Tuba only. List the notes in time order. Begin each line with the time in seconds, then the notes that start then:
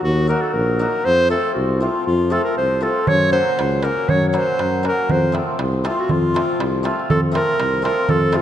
0.03 D#2
0.54 A#1
1.05 F2
1.57 C2
2.07 F2
2.58 C2
3.09 F#2
3.59 C#2
4.08 F#2
4.59 F#2
5.10 F2
5.59 C2
6.10 F2
6.60 C2
7.10 F2
7.59 C2
8.09 F2